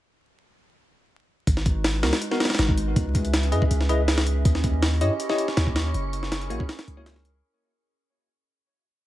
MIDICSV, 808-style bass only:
0, 0, Header, 1, 2, 480
1, 0, Start_track
1, 0, Key_signature, 5, "minor"
1, 0, Tempo, 372671
1, 1896, Time_signature, 4, 2, 24, 8
1, 11669, End_track
2, 0, Start_track
2, 0, Title_t, "808-style bass"
2, 0, Program_c, 0, 38
2, 1896, Note_on_c, 0, 32, 97
2, 2616, Note_on_c, 0, 37, 94
2, 2635, Note_off_c, 0, 32, 0
2, 2728, Note_off_c, 0, 37, 0
2, 3336, Note_on_c, 0, 32, 98
2, 3797, Note_off_c, 0, 32, 0
2, 3816, Note_on_c, 0, 37, 98
2, 4536, Note_on_c, 0, 42, 92
2, 4555, Note_off_c, 0, 37, 0
2, 4649, Note_off_c, 0, 42, 0
2, 4776, Note_on_c, 0, 37, 83
2, 5717, Note_off_c, 0, 37, 0
2, 5735, Note_on_c, 0, 39, 99
2, 6458, Note_on_c, 0, 43, 96
2, 6477, Note_off_c, 0, 39, 0
2, 6569, Note_off_c, 0, 43, 0
2, 7178, Note_on_c, 0, 39, 100
2, 7638, Note_off_c, 0, 39, 0
2, 7656, Note_on_c, 0, 30, 100
2, 8376, Note_on_c, 0, 34, 92
2, 8395, Note_off_c, 0, 30, 0
2, 8488, Note_off_c, 0, 34, 0
2, 8857, Note_on_c, 0, 37, 102
2, 9558, Note_off_c, 0, 37, 0
2, 11669, End_track
0, 0, End_of_file